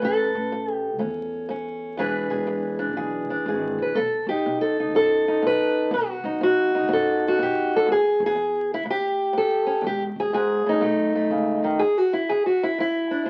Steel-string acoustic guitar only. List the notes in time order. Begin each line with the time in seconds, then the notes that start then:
Already playing: A3 B4
0.02 A2 A4
0.52 A2
0.73 G4
0.99 A2 C#4
1.49 A2 C#4
1.97 E2 E3 D4 G#4 B4
2.30 G#4
2.47 E2
2.79 D4
2.97 E2 G#4
3.30 D4
3.48 E2 G#4
3.82 B4
3.95 B2 A4
4.29 D#4 G4
4.46 B2
4.61 A4
4.80 D#4
4.95 B2 A4
5.28 D#4
5.42 B2
5.47 B4
5.91 B2 F#4
6.25 D#4
6.41 B2 F#4
6.75 D#4
6.89 B2
6.93 A4
7.28 F#4
7.38 B2
7.42 G4
7.76 A4
7.86 E2
7.92 G#4
8.26 G#4
8.35 E2
8.74 E4
8.86 A2
8.90 G4
9.33 A2
9.38 A4
9.66 C#4
9.82 E2
9.87 G4
10.20 G#4
10.33 G#2 G#4
10.66 A2 D#4
10.81 B2 A3
11.15 A3
11.31 C#3
11.64 D#3
11.79 E2 G#4
11.98 F#4
12.13 E4
12.29 E2 G#4
12.46 F#4
12.63 E4
12.78 E2 E4
13.11 D4
13.25 E2 D4